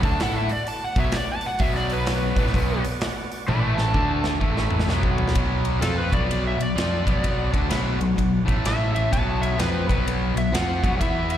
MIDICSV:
0, 0, Header, 1, 8, 480
1, 0, Start_track
1, 0, Key_signature, 2, "minor"
1, 0, Tempo, 469484
1, 1641, Time_signature, 4, 2, 24, 8
1, 11630, End_track
2, 0, Start_track
2, 0, Title_t, "Electric slide guitar"
2, 0, Program_c, 0, 29
2, 51, Note_on_c, 0, 81, 101
2, 205, Note_off_c, 0, 81, 0
2, 230, Note_on_c, 0, 78, 90
2, 373, Note_on_c, 0, 76, 96
2, 374, Note_off_c, 0, 78, 0
2, 525, Note_off_c, 0, 76, 0
2, 538, Note_on_c, 0, 74, 77
2, 687, Note_off_c, 0, 74, 0
2, 692, Note_on_c, 0, 81, 93
2, 843, Note_off_c, 0, 81, 0
2, 861, Note_on_c, 0, 78, 79
2, 1007, Note_off_c, 0, 78, 0
2, 1018, Note_on_c, 0, 76, 92
2, 1166, Note_off_c, 0, 76, 0
2, 1198, Note_on_c, 0, 74, 88
2, 1336, Note_off_c, 0, 74, 0
2, 1345, Note_on_c, 0, 81, 100
2, 1488, Note_off_c, 0, 81, 0
2, 1497, Note_on_c, 0, 78, 107
2, 1640, Note_on_c, 0, 76, 108
2, 1644, Note_off_c, 0, 78, 0
2, 1794, Note_off_c, 0, 76, 0
2, 1805, Note_on_c, 0, 74, 100
2, 1957, Note_off_c, 0, 74, 0
2, 1970, Note_on_c, 0, 71, 108
2, 2891, Note_off_c, 0, 71, 0
2, 3558, Note_on_c, 0, 74, 88
2, 3567, Note_on_c, 0, 83, 100
2, 3701, Note_on_c, 0, 76, 86
2, 3703, Note_off_c, 0, 83, 0
2, 3707, Note_on_c, 0, 81, 89
2, 3714, Note_off_c, 0, 74, 0
2, 3843, Note_off_c, 0, 81, 0
2, 3855, Note_on_c, 0, 81, 108
2, 3865, Note_off_c, 0, 76, 0
2, 4326, Note_off_c, 0, 81, 0
2, 5944, Note_on_c, 0, 69, 66
2, 6101, Note_off_c, 0, 69, 0
2, 6111, Note_on_c, 0, 71, 83
2, 6264, Note_off_c, 0, 71, 0
2, 6272, Note_on_c, 0, 74, 71
2, 6580, Note_off_c, 0, 74, 0
2, 6617, Note_on_c, 0, 76, 78
2, 6759, Note_off_c, 0, 76, 0
2, 6771, Note_on_c, 0, 74, 90
2, 7694, Note_off_c, 0, 74, 0
2, 8862, Note_on_c, 0, 76, 87
2, 9136, Note_off_c, 0, 76, 0
2, 9148, Note_on_c, 0, 76, 78
2, 9317, Note_off_c, 0, 76, 0
2, 9329, Note_on_c, 0, 81, 94
2, 9619, Note_off_c, 0, 81, 0
2, 9626, Note_on_c, 0, 76, 85
2, 9797, Note_off_c, 0, 76, 0
2, 9805, Note_on_c, 0, 71, 82
2, 10098, Note_off_c, 0, 71, 0
2, 10115, Note_on_c, 0, 71, 61
2, 10283, Note_off_c, 0, 71, 0
2, 10611, Note_on_c, 0, 76, 86
2, 10764, Note_off_c, 0, 76, 0
2, 10774, Note_on_c, 0, 78, 90
2, 11238, Note_off_c, 0, 78, 0
2, 11251, Note_on_c, 0, 76, 102
2, 11561, Note_off_c, 0, 76, 0
2, 11572, Note_on_c, 0, 76, 80
2, 11630, Note_off_c, 0, 76, 0
2, 11630, End_track
3, 0, Start_track
3, 0, Title_t, "Tonewheel organ"
3, 0, Program_c, 1, 16
3, 0, Note_on_c, 1, 59, 62
3, 0, Note_on_c, 1, 66, 70
3, 0, Note_on_c, 1, 74, 67
3, 1126, Note_off_c, 1, 66, 0
3, 1129, Note_off_c, 1, 74, 0
3, 1130, Note_off_c, 1, 59, 0
3, 1177, Note_on_c, 1, 66, 78
3, 1185, Note_on_c, 1, 74, 78
3, 1187, Note_on_c, 1, 59, 73
3, 3534, Note_off_c, 1, 66, 0
3, 3538, Note_off_c, 1, 74, 0
3, 3539, Note_off_c, 1, 59, 0
3, 3558, Note_on_c, 1, 76, 72
3, 3560, Note_on_c, 1, 64, 75
3, 3565, Note_on_c, 1, 57, 64
3, 4028, Note_off_c, 1, 76, 0
3, 4029, Note_off_c, 1, 64, 0
3, 4032, Note_off_c, 1, 57, 0
3, 4050, Note_on_c, 1, 57, 67
3, 4050, Note_on_c, 1, 74, 68
3, 4053, Note_on_c, 1, 62, 64
3, 4514, Note_off_c, 1, 57, 0
3, 4514, Note_off_c, 1, 74, 0
3, 4515, Note_off_c, 1, 62, 0
3, 4530, Note_on_c, 1, 64, 76
3, 4535, Note_on_c, 1, 57, 75
3, 4535, Note_on_c, 1, 76, 65
3, 4993, Note_off_c, 1, 64, 0
3, 4996, Note_off_c, 1, 57, 0
3, 4996, Note_off_c, 1, 76, 0
3, 5021, Note_on_c, 1, 59, 74
3, 5025, Note_on_c, 1, 66, 73
3, 5025, Note_on_c, 1, 74, 74
3, 5479, Note_off_c, 1, 59, 0
3, 5480, Note_off_c, 1, 66, 0
3, 5481, Note_off_c, 1, 74, 0
3, 5492, Note_on_c, 1, 66, 60
3, 5498, Note_on_c, 1, 59, 60
3, 5505, Note_on_c, 1, 74, 58
3, 8638, Note_off_c, 1, 66, 0
3, 8641, Note_off_c, 1, 59, 0
3, 8645, Note_off_c, 1, 74, 0
3, 8648, Note_on_c, 1, 64, 69
3, 8657, Note_on_c, 1, 57, 72
3, 8664, Note_on_c, 1, 76, 73
3, 9306, Note_off_c, 1, 64, 0
3, 9310, Note_off_c, 1, 57, 0
3, 9314, Note_off_c, 1, 76, 0
3, 9330, Note_on_c, 1, 66, 65
3, 9340, Note_on_c, 1, 59, 68
3, 9341, Note_on_c, 1, 74, 69
3, 11234, Note_off_c, 1, 66, 0
3, 11239, Note_off_c, 1, 59, 0
3, 11240, Note_off_c, 1, 74, 0
3, 11254, Note_on_c, 1, 59, 67
3, 11257, Note_on_c, 1, 64, 70
3, 11258, Note_on_c, 1, 76, 64
3, 11630, Note_off_c, 1, 59, 0
3, 11630, Note_off_c, 1, 64, 0
3, 11630, Note_off_c, 1, 76, 0
3, 11630, End_track
4, 0, Start_track
4, 0, Title_t, "Distorted electric guitar"
4, 0, Program_c, 2, 30
4, 19, Note_on_c, 2, 50, 93
4, 22, Note_on_c, 2, 57, 108
4, 30, Note_on_c, 2, 62, 97
4, 197, Note_off_c, 2, 50, 0
4, 198, Note_off_c, 2, 57, 0
4, 202, Note_off_c, 2, 62, 0
4, 219, Note_on_c, 2, 57, 84
4, 221, Note_on_c, 2, 64, 97
4, 226, Note_on_c, 2, 69, 106
4, 506, Note_off_c, 2, 57, 0
4, 507, Note_off_c, 2, 64, 0
4, 510, Note_off_c, 2, 69, 0
4, 991, Note_on_c, 2, 47, 90
4, 997, Note_on_c, 2, 54, 97
4, 1003, Note_on_c, 2, 59, 95
4, 1160, Note_off_c, 2, 47, 0
4, 1163, Note_off_c, 2, 54, 0
4, 1166, Note_off_c, 2, 59, 0
4, 1636, Note_on_c, 2, 47, 82
4, 1641, Note_on_c, 2, 54, 100
4, 1643, Note_on_c, 2, 59, 99
4, 2408, Note_off_c, 2, 47, 0
4, 2411, Note_off_c, 2, 54, 0
4, 2411, Note_off_c, 2, 59, 0
4, 2416, Note_on_c, 2, 45, 91
4, 2421, Note_on_c, 2, 52, 100
4, 2426, Note_on_c, 2, 57, 121
4, 2589, Note_off_c, 2, 45, 0
4, 2591, Note_off_c, 2, 52, 0
4, 2593, Note_off_c, 2, 57, 0
4, 2606, Note_on_c, 2, 47, 102
4, 2609, Note_on_c, 2, 54, 108
4, 2618, Note_on_c, 2, 59, 104
4, 2893, Note_off_c, 2, 47, 0
4, 2895, Note_off_c, 2, 54, 0
4, 2899, Note_off_c, 2, 59, 0
4, 3556, Note_on_c, 2, 45, 89
4, 3567, Note_on_c, 2, 57, 101
4, 3569, Note_on_c, 2, 52, 92
4, 4015, Note_off_c, 2, 57, 0
4, 4016, Note_off_c, 2, 45, 0
4, 4020, Note_on_c, 2, 50, 96
4, 4024, Note_off_c, 2, 52, 0
4, 4028, Note_on_c, 2, 57, 88
4, 4031, Note_on_c, 2, 62, 92
4, 4488, Note_off_c, 2, 57, 0
4, 4491, Note_off_c, 2, 50, 0
4, 4495, Note_on_c, 2, 45, 104
4, 4496, Note_off_c, 2, 62, 0
4, 4499, Note_on_c, 2, 52, 106
4, 4500, Note_on_c, 2, 57, 104
4, 4973, Note_off_c, 2, 45, 0
4, 4977, Note_off_c, 2, 52, 0
4, 4977, Note_on_c, 2, 47, 94
4, 4978, Note_off_c, 2, 57, 0
4, 4987, Note_on_c, 2, 54, 93
4, 4987, Note_on_c, 2, 59, 102
4, 5452, Note_off_c, 2, 47, 0
4, 5461, Note_off_c, 2, 54, 0
4, 5461, Note_off_c, 2, 59, 0
4, 5464, Note_on_c, 2, 47, 82
4, 5476, Note_on_c, 2, 54, 101
4, 5476, Note_on_c, 2, 59, 88
4, 5940, Note_off_c, 2, 47, 0
4, 5946, Note_off_c, 2, 54, 0
4, 5946, Note_off_c, 2, 59, 0
4, 5947, Note_on_c, 2, 53, 88
4, 5951, Note_on_c, 2, 60, 95
4, 5951, Note_on_c, 2, 65, 96
4, 6241, Note_off_c, 2, 53, 0
4, 6243, Note_off_c, 2, 60, 0
4, 6243, Note_off_c, 2, 65, 0
4, 6253, Note_on_c, 2, 47, 90
4, 6257, Note_on_c, 2, 54, 94
4, 6263, Note_on_c, 2, 59, 92
4, 6721, Note_off_c, 2, 47, 0
4, 6725, Note_off_c, 2, 54, 0
4, 6728, Note_off_c, 2, 59, 0
4, 6733, Note_on_c, 2, 47, 55
4, 6738, Note_on_c, 2, 54, 65
4, 6874, Note_off_c, 2, 47, 0
4, 6876, Note_off_c, 2, 54, 0
4, 6905, Note_on_c, 2, 53, 92
4, 6909, Note_on_c, 2, 60, 77
4, 6912, Note_on_c, 2, 65, 92
4, 7198, Note_off_c, 2, 53, 0
4, 7202, Note_on_c, 2, 47, 82
4, 7203, Note_off_c, 2, 60, 0
4, 7205, Note_off_c, 2, 65, 0
4, 7212, Note_on_c, 2, 54, 77
4, 7216, Note_on_c, 2, 59, 92
4, 7680, Note_off_c, 2, 47, 0
4, 7684, Note_off_c, 2, 54, 0
4, 7684, Note_off_c, 2, 59, 0
4, 7684, Note_on_c, 2, 50, 93
4, 7688, Note_on_c, 2, 62, 101
4, 7689, Note_on_c, 2, 57, 96
4, 7855, Note_off_c, 2, 50, 0
4, 7856, Note_off_c, 2, 62, 0
4, 7859, Note_off_c, 2, 57, 0
4, 7859, Note_on_c, 2, 47, 84
4, 7860, Note_on_c, 2, 59, 100
4, 7863, Note_on_c, 2, 54, 97
4, 8156, Note_off_c, 2, 54, 0
4, 8157, Note_off_c, 2, 47, 0
4, 8161, Note_off_c, 2, 59, 0
4, 8169, Note_on_c, 2, 47, 62
4, 8169, Note_on_c, 2, 54, 72
4, 8314, Note_off_c, 2, 54, 0
4, 8315, Note_off_c, 2, 47, 0
4, 8340, Note_on_c, 2, 54, 73
4, 8343, Note_on_c, 2, 47, 72
4, 8590, Note_off_c, 2, 54, 0
4, 8592, Note_off_c, 2, 47, 0
4, 8639, Note_on_c, 2, 45, 74
4, 8642, Note_on_c, 2, 52, 82
4, 8647, Note_on_c, 2, 57, 97
4, 9303, Note_off_c, 2, 45, 0
4, 9304, Note_off_c, 2, 52, 0
4, 9307, Note_off_c, 2, 57, 0
4, 9320, Note_on_c, 2, 54, 98
4, 9321, Note_on_c, 2, 47, 85
4, 9325, Note_on_c, 2, 59, 90
4, 9777, Note_off_c, 2, 47, 0
4, 9781, Note_on_c, 2, 53, 81
4, 9788, Note_off_c, 2, 54, 0
4, 9788, Note_off_c, 2, 59, 0
4, 9792, Note_on_c, 2, 60, 82
4, 9792, Note_on_c, 2, 65, 92
4, 10086, Note_off_c, 2, 53, 0
4, 10091, Note_off_c, 2, 60, 0
4, 10091, Note_off_c, 2, 65, 0
4, 10102, Note_on_c, 2, 47, 93
4, 10104, Note_on_c, 2, 54, 96
4, 10107, Note_on_c, 2, 59, 99
4, 10567, Note_off_c, 2, 47, 0
4, 10567, Note_off_c, 2, 54, 0
4, 10579, Note_off_c, 2, 59, 0
4, 10579, Note_on_c, 2, 54, 69
4, 10580, Note_on_c, 2, 47, 54
4, 10725, Note_off_c, 2, 54, 0
4, 10726, Note_off_c, 2, 47, 0
4, 10760, Note_on_c, 2, 53, 84
4, 10768, Note_on_c, 2, 60, 88
4, 10771, Note_on_c, 2, 65, 86
4, 11058, Note_off_c, 2, 53, 0
4, 11062, Note_off_c, 2, 60, 0
4, 11063, Note_off_c, 2, 65, 0
4, 11076, Note_on_c, 2, 54, 97
4, 11077, Note_on_c, 2, 47, 87
4, 11086, Note_on_c, 2, 59, 102
4, 11257, Note_off_c, 2, 47, 0
4, 11257, Note_on_c, 2, 52, 80
4, 11260, Note_off_c, 2, 54, 0
4, 11260, Note_off_c, 2, 59, 0
4, 11260, Note_on_c, 2, 59, 92
4, 11265, Note_on_c, 2, 64, 90
4, 11630, Note_off_c, 2, 52, 0
4, 11630, Note_off_c, 2, 59, 0
4, 11630, Note_off_c, 2, 64, 0
4, 11630, End_track
5, 0, Start_track
5, 0, Title_t, "Fingered electric bass"
5, 0, Program_c, 3, 33
5, 33, Note_on_c, 3, 38, 98
5, 197, Note_off_c, 3, 38, 0
5, 213, Note_on_c, 3, 45, 99
5, 491, Note_off_c, 3, 45, 0
5, 982, Note_on_c, 3, 35, 95
5, 1148, Note_off_c, 3, 35, 0
5, 1638, Note_on_c, 3, 35, 99
5, 2377, Note_off_c, 3, 35, 0
5, 2415, Note_on_c, 3, 33, 105
5, 2581, Note_off_c, 3, 33, 0
5, 2597, Note_on_c, 3, 35, 105
5, 2877, Note_off_c, 3, 35, 0
5, 3566, Note_on_c, 3, 33, 103
5, 4004, Note_off_c, 3, 33, 0
5, 4032, Note_on_c, 3, 38, 91
5, 4476, Note_off_c, 3, 38, 0
5, 4515, Note_on_c, 3, 33, 99
5, 4957, Note_off_c, 3, 33, 0
5, 4986, Note_on_c, 3, 35, 97
5, 5432, Note_off_c, 3, 35, 0
5, 5476, Note_on_c, 3, 35, 98
5, 5918, Note_off_c, 3, 35, 0
5, 5953, Note_on_c, 3, 41, 82
5, 6232, Note_off_c, 3, 41, 0
5, 6261, Note_on_c, 3, 35, 99
5, 6703, Note_off_c, 3, 35, 0
5, 6745, Note_on_c, 3, 35, 75
5, 6904, Note_off_c, 3, 35, 0
5, 6913, Note_on_c, 3, 41, 89
5, 7193, Note_off_c, 3, 41, 0
5, 7229, Note_on_c, 3, 35, 97
5, 7669, Note_off_c, 3, 35, 0
5, 7706, Note_on_c, 3, 38, 94
5, 7866, Note_off_c, 3, 38, 0
5, 7877, Note_on_c, 3, 35, 83
5, 8158, Note_off_c, 3, 35, 0
5, 8191, Note_on_c, 3, 35, 84
5, 8349, Note_off_c, 3, 35, 0
5, 8363, Note_on_c, 3, 35, 83
5, 8641, Note_off_c, 3, 35, 0
5, 8669, Note_on_c, 3, 33, 99
5, 9282, Note_off_c, 3, 33, 0
5, 9329, Note_on_c, 3, 35, 94
5, 9772, Note_off_c, 3, 35, 0
5, 9812, Note_on_c, 3, 41, 83
5, 10090, Note_off_c, 3, 41, 0
5, 10117, Note_on_c, 3, 35, 97
5, 10560, Note_off_c, 3, 35, 0
5, 10593, Note_on_c, 3, 35, 82
5, 10756, Note_off_c, 3, 35, 0
5, 10780, Note_on_c, 3, 41, 86
5, 11056, Note_off_c, 3, 41, 0
5, 11081, Note_on_c, 3, 35, 93
5, 11241, Note_off_c, 3, 35, 0
5, 11253, Note_on_c, 3, 40, 92
5, 11630, Note_off_c, 3, 40, 0
5, 11630, End_track
6, 0, Start_track
6, 0, Title_t, "Muted distorted electric guitar strokes"
6, 515, Note_on_c, 9, 29, 62
6, 617, Note_off_c, 9, 29, 0
6, 1171, Note_on_c, 9, 29, 62
6, 1273, Note_off_c, 9, 29, 0
6, 11630, End_track
7, 0, Start_track
7, 0, Title_t, "Muted fingered electric bass strokes"
7, 520, Note_on_c, 9, 29, 45
7, 622, Note_off_c, 9, 29, 0
7, 1165, Note_on_c, 9, 29, 46
7, 1267, Note_off_c, 9, 29, 0
7, 11630, End_track
8, 0, Start_track
8, 0, Title_t, "Drums"
8, 34, Note_on_c, 9, 36, 102
8, 35, Note_on_c, 9, 46, 54
8, 136, Note_off_c, 9, 36, 0
8, 137, Note_off_c, 9, 46, 0
8, 205, Note_on_c, 9, 46, 84
8, 211, Note_on_c, 9, 38, 109
8, 307, Note_off_c, 9, 46, 0
8, 313, Note_off_c, 9, 38, 0
8, 505, Note_on_c, 9, 46, 54
8, 607, Note_off_c, 9, 46, 0
8, 682, Note_on_c, 9, 46, 63
8, 784, Note_off_c, 9, 46, 0
8, 980, Note_on_c, 9, 46, 53
8, 983, Note_on_c, 9, 36, 107
8, 1083, Note_off_c, 9, 46, 0
8, 1085, Note_off_c, 9, 36, 0
8, 1144, Note_on_c, 9, 46, 84
8, 1150, Note_on_c, 9, 38, 116
8, 1246, Note_off_c, 9, 46, 0
8, 1252, Note_off_c, 9, 38, 0
8, 1442, Note_on_c, 9, 46, 56
8, 1544, Note_off_c, 9, 46, 0
8, 1624, Note_on_c, 9, 46, 85
8, 1634, Note_on_c, 9, 36, 117
8, 1726, Note_off_c, 9, 46, 0
8, 1736, Note_off_c, 9, 36, 0
8, 1790, Note_on_c, 9, 38, 32
8, 1892, Note_off_c, 9, 38, 0
8, 1939, Note_on_c, 9, 46, 60
8, 2041, Note_off_c, 9, 46, 0
8, 2113, Note_on_c, 9, 46, 85
8, 2119, Note_on_c, 9, 38, 119
8, 2215, Note_off_c, 9, 46, 0
8, 2221, Note_off_c, 9, 38, 0
8, 2418, Note_on_c, 9, 36, 104
8, 2418, Note_on_c, 9, 46, 61
8, 2520, Note_off_c, 9, 36, 0
8, 2521, Note_off_c, 9, 46, 0
8, 2521, Note_on_c, 9, 38, 32
8, 2598, Note_on_c, 9, 36, 96
8, 2608, Note_on_c, 9, 46, 79
8, 2624, Note_off_c, 9, 38, 0
8, 2701, Note_off_c, 9, 36, 0
8, 2711, Note_off_c, 9, 46, 0
8, 2910, Note_on_c, 9, 46, 66
8, 3012, Note_off_c, 9, 46, 0
8, 3078, Note_on_c, 9, 46, 83
8, 3084, Note_on_c, 9, 38, 127
8, 3181, Note_off_c, 9, 46, 0
8, 3187, Note_off_c, 9, 38, 0
8, 3391, Note_on_c, 9, 46, 60
8, 3493, Note_off_c, 9, 46, 0
8, 3560, Note_on_c, 9, 48, 70
8, 3662, Note_off_c, 9, 48, 0
8, 3866, Note_on_c, 9, 38, 74
8, 3968, Note_off_c, 9, 38, 0
8, 4032, Note_on_c, 9, 36, 76
8, 4134, Note_off_c, 9, 36, 0
8, 4335, Note_on_c, 9, 38, 86
8, 4437, Note_off_c, 9, 38, 0
8, 4511, Note_on_c, 9, 36, 74
8, 4614, Note_off_c, 9, 36, 0
8, 4675, Note_on_c, 9, 38, 75
8, 4778, Note_off_c, 9, 38, 0
8, 4811, Note_on_c, 9, 45, 82
8, 4902, Note_on_c, 9, 38, 84
8, 4913, Note_off_c, 9, 45, 0
8, 4998, Note_off_c, 9, 38, 0
8, 4998, Note_on_c, 9, 38, 100
8, 5100, Note_off_c, 9, 38, 0
8, 5145, Note_on_c, 9, 36, 90
8, 5247, Note_off_c, 9, 36, 0
8, 5298, Note_on_c, 9, 43, 99
8, 5394, Note_on_c, 9, 38, 78
8, 5400, Note_off_c, 9, 43, 0
8, 5473, Note_on_c, 9, 51, 94
8, 5476, Note_on_c, 9, 36, 111
8, 5497, Note_off_c, 9, 38, 0
8, 5575, Note_off_c, 9, 51, 0
8, 5578, Note_off_c, 9, 36, 0
8, 5776, Note_on_c, 9, 51, 65
8, 5878, Note_off_c, 9, 51, 0
8, 5954, Note_on_c, 9, 51, 105
8, 5960, Note_on_c, 9, 38, 105
8, 6056, Note_off_c, 9, 51, 0
8, 6062, Note_off_c, 9, 38, 0
8, 6262, Note_on_c, 9, 36, 96
8, 6266, Note_on_c, 9, 51, 63
8, 6364, Note_off_c, 9, 36, 0
8, 6368, Note_off_c, 9, 51, 0
8, 6450, Note_on_c, 9, 51, 85
8, 6552, Note_off_c, 9, 51, 0
8, 6753, Note_on_c, 9, 51, 70
8, 6855, Note_off_c, 9, 51, 0
8, 6932, Note_on_c, 9, 51, 94
8, 6938, Note_on_c, 9, 38, 111
8, 7034, Note_off_c, 9, 51, 0
8, 7040, Note_off_c, 9, 38, 0
8, 7227, Note_on_c, 9, 36, 100
8, 7233, Note_on_c, 9, 51, 67
8, 7330, Note_off_c, 9, 36, 0
8, 7335, Note_off_c, 9, 51, 0
8, 7402, Note_on_c, 9, 51, 88
8, 7403, Note_on_c, 9, 36, 99
8, 7505, Note_off_c, 9, 51, 0
8, 7506, Note_off_c, 9, 36, 0
8, 7705, Note_on_c, 9, 36, 93
8, 7708, Note_on_c, 9, 51, 59
8, 7808, Note_off_c, 9, 36, 0
8, 7810, Note_off_c, 9, 51, 0
8, 7878, Note_on_c, 9, 51, 96
8, 7884, Note_on_c, 9, 38, 100
8, 7980, Note_off_c, 9, 51, 0
8, 7987, Note_off_c, 9, 38, 0
8, 8187, Note_on_c, 9, 51, 61
8, 8289, Note_off_c, 9, 51, 0
8, 8365, Note_on_c, 9, 36, 72
8, 8369, Note_on_c, 9, 51, 70
8, 8467, Note_off_c, 9, 36, 0
8, 8471, Note_off_c, 9, 51, 0
8, 8671, Note_on_c, 9, 36, 101
8, 8678, Note_on_c, 9, 51, 60
8, 8773, Note_off_c, 9, 36, 0
8, 8780, Note_off_c, 9, 51, 0
8, 8848, Note_on_c, 9, 51, 97
8, 8854, Note_on_c, 9, 38, 113
8, 8950, Note_off_c, 9, 51, 0
8, 8957, Note_off_c, 9, 38, 0
8, 9159, Note_on_c, 9, 51, 61
8, 9261, Note_off_c, 9, 51, 0
8, 9333, Note_on_c, 9, 36, 94
8, 9336, Note_on_c, 9, 51, 93
8, 9435, Note_off_c, 9, 36, 0
8, 9438, Note_off_c, 9, 51, 0
8, 9642, Note_on_c, 9, 51, 65
8, 9744, Note_off_c, 9, 51, 0
8, 9809, Note_on_c, 9, 51, 94
8, 9816, Note_on_c, 9, 38, 109
8, 9912, Note_off_c, 9, 51, 0
8, 9918, Note_off_c, 9, 38, 0
8, 10117, Note_on_c, 9, 36, 98
8, 10126, Note_on_c, 9, 51, 68
8, 10219, Note_off_c, 9, 36, 0
8, 10228, Note_off_c, 9, 51, 0
8, 10301, Note_on_c, 9, 51, 82
8, 10404, Note_off_c, 9, 51, 0
8, 10603, Note_on_c, 9, 51, 74
8, 10705, Note_off_c, 9, 51, 0
8, 10782, Note_on_c, 9, 51, 107
8, 10788, Note_on_c, 9, 38, 114
8, 10884, Note_off_c, 9, 51, 0
8, 10890, Note_off_c, 9, 38, 0
8, 11079, Note_on_c, 9, 36, 94
8, 11083, Note_on_c, 9, 51, 68
8, 11181, Note_off_c, 9, 36, 0
8, 11185, Note_off_c, 9, 51, 0
8, 11254, Note_on_c, 9, 36, 101
8, 11257, Note_on_c, 9, 51, 86
8, 11356, Note_off_c, 9, 36, 0
8, 11359, Note_off_c, 9, 51, 0
8, 11553, Note_on_c, 9, 51, 67
8, 11630, Note_off_c, 9, 51, 0
8, 11630, End_track
0, 0, End_of_file